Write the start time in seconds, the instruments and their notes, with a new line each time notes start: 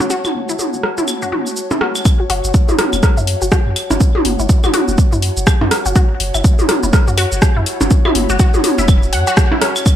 Already playing: ambient pad F#4 C#5 F#5 A5
0.00 sub bass F#1, synth pluck F#4, percussion blips, shaker
0.10 synth pluck F#4, shaker
0.25 high tom, claves, shaker
0.35 sub bass F#1
0.49 sub bass F#1, synth pluck E4, shaker
0.59 high tom, shaker
0.73 sub bass F#1, shaker
0.83 cross-stick
0.98 sub bass E1, synth pluck E4, high tom, shaker
1.08 claves, shaker
1.22 sub bass F#2, synth pluck F#4, shaker
1.32 sub bass F#1, synth pluck F#4, high tom
1.47 shaker
1.57 shaker
1.71 synth pluck E4, high tom, percussion blips, shaker
1.81 synth pluck F#4, cross-stick
1.95 claves, shaker
2.05 kick, claves, shaker
2.20 synth pluck F#4
2.30 sub bass F#1, synth pluck F#4, open hi-hat
2.44 sub bass F#1, shaker
2.54 kick, shaker
2.69 sub bass F#1, synth pluck E4, high tom, shaker
2.79 cross-stick, open hi-hat, high tom
2.93 sub bass E1, claves, shaker
3.03 kick, cross-stick, shaker
3.17 sub bass F#2, synth pluck E4, shaker
3.27 open hi-hat
3.42 sub bass F#1, synth pluck F#4, shaker
3.52 synth pluck F#4, kick, cross-stick, shaker
3.66 sub bass F#2
3.76 open hi-hat, claves
3.90 sub bass F#1, synth pluck E4, percussion blips, shaker
4.00 kick, shaker
4.15 high tom
4.25 sub bass F#1, open hi-hat
4.39 sub bass F#1, synth pluck E4, shaker
4.49 kick, shaker
4.64 sub bass F#1, synth pluck F#4, high tom, claves, shaker
4.74 synth pluck F#4, open hi-hat, high tom
4.88 sub bass E1, shaker
4.98 kick, shaker
5.12 sub bass F#2, synth pluck E4, shaker
5.22 open hi-hat
5.37 sub bass F#1, shaker
5.47 kick, cross-stick, claves, shaker
5.61 sub bass F#2, synth pluck E4, percussion blips
5.71 cross-stick, open hi-hat
5.86 sub bass F#1, synth pluck F#4, shaker
5.96 synth pluck F#4, kick, shaker
6.20 sub bass F#1, open hi-hat
6.34 sub bass F#1, synth pluck E4, claves, shaker
6.44 kick, shaker
6.59 sub bass F#1, high tom, shaker
6.69 cross-stick, open hi-hat, high tom
6.83 sub bass E1, synth pluck E4, shaker
6.93 kick, cross-stick, shaker
7.08 sub bass F#2, synth pluck F#4, shaker
7.18 synth pluck F#4, open hi-hat, claves
7.32 sub bass F#1, shaker
7.42 kick, cross-stick, shaker
7.56 sub bass F#2, synth pluck E4
7.66 open hi-hat
7.81 sub bass F#1, percussion blips, shaker
7.91 kick, shaker
8.05 synth pluck E4, high tom, claves
8.15 sub bass F#1, open hi-hat
8.30 sub bass F#1, synth pluck F#4, shaker
8.39 synth pluck F#4, kick, shaker
8.54 sub bass F#1, high tom, shaker
8.64 open hi-hat, high tom
8.78 sub bass E1, synth pluck E4, shaker
8.88 kick, claves, shaker
9.03 shaker
9.13 sub bass F#2, synth pluck F#5, open hi-hat
9.27 synth pluck F#4, shaker
9.37 kick, cross-stick, shaker
9.52 synth pluck E4, percussion blips
9.61 synth pluck C#4, cross-stick, open hi-hat
9.76 claves, shaker
9.86 ambient pad F#4, kick, claves, shaker